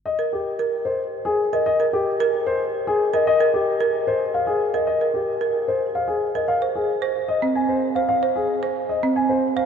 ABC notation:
X:1
M:3/4
L:1/16
Q:1/4=112
K:Cphr
V:1 name="Grand piano"
e z G z3 c z2 A z e | e z G z3 c z2 A z e | e z G z3 c z f A z e | e z G z3 c z f A z e |
f z A z3 e z a c z f | f z A z3 e z a c z f |]
V:2 name="Marimba"
z B z2 B z6 B | z B z2 B z6 B | z B z2 B z6 B | z B z2 B z6 B |
z c z2 c z2 C z3 c | z c z2 c z2 C z3 c |]